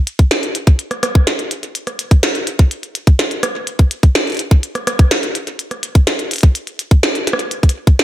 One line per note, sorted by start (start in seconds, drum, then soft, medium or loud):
0.07 closed hi-hat medium
0.19 kick loud
0.19 closed hi-hat soft
0.31 snare loud
0.31 closed hi-hat medium
0.43 closed hi-hat soft
0.55 closed hi-hat medium
0.67 kick loud
0.67 closed hi-hat soft
0.79 closed hi-hat medium
0.91 cross-stick medium
0.91 closed hi-hat soft
1.03 cross-stick medium
1.03 closed hi-hat medium
1.15 kick loud
1.27 snare loud
1.27 closed hi-hat medium
1.39 closed hi-hat soft
1.51 closed hi-hat medium
1.63 closed hi-hat soft
1.75 closed hi-hat medium
1.87 cross-stick soft
1.87 closed hi-hat soft
1.99 closed hi-hat medium
2.11 kick loud
2.11 closed hi-hat soft
2.23 snare loud
2.23 closed hi-hat medium
2.35 closed hi-hat soft
2.47 closed hi-hat medium
2.59 kick loud
2.59 closed hi-hat soft
2.71 closed hi-hat medium
2.83 closed hi-hat soft
2.95 closed hi-hat medium
3.07 kick loud
3.07 closed hi-hat soft
3.19 snare loud
3.19 closed hi-hat medium
3.31 closed hi-hat soft
3.43 cross-stick medium
3.43 closed hi-hat medium
3.67 closed hi-hat medium
3.79 kick medium
3.79 closed hi-hat soft
3.91 closed hi-hat medium
4.03 kick loud
4.03 closed hi-hat soft
4.15 snare loud
4.15 closed hi-hat medium
4.27 closed hi-hat soft
4.30 closed hi-hat soft
4.32 closed hi-hat soft
4.34 closed hi-hat soft
4.37 closed hi-hat soft
4.39 closed hi-hat medium
4.51 kick loud
4.51 closed hi-hat soft
4.63 closed hi-hat medium
4.75 cross-stick soft
4.75 closed hi-hat soft
4.87 cross-stick medium
4.87 closed hi-hat medium
4.99 kick loud
4.99 closed hi-hat soft
5.11 snare loud
5.11 closed hi-hat medium
5.23 closed hi-hat soft
5.35 closed hi-hat medium
5.47 closed hi-hat soft
5.59 closed hi-hat medium
5.71 cross-stick soft
5.71 closed hi-hat soft
5.83 closed hi-hat medium
5.95 kick loud
5.95 closed hi-hat soft
6.07 snare loud
6.07 closed hi-hat medium
6.19 closed hi-hat soft
6.31 closed hi-hat medium
6.33 closed hi-hat medium
6.36 closed hi-hat medium
6.38 closed hi-hat soft
6.41 kick loud
6.41 closed hi-hat soft
6.55 closed hi-hat medium
6.67 closed hi-hat soft
6.79 closed hi-hat medium
6.91 kick loud
6.91 closed hi-hat soft
7.03 snare loud
7.03 closed hi-hat medium
7.15 closed hi-hat soft
7.27 snare medium
7.27 closed hi-hat medium
7.33 cross-stick medium
7.39 closed hi-hat soft
7.51 closed hi-hat medium
7.63 kick medium
7.63 closed hi-hat soft
7.69 closed hi-hat medium
7.87 kick loud
7.87 closed hi-hat soft
7.99 snare loud
7.99 closed hi-hat medium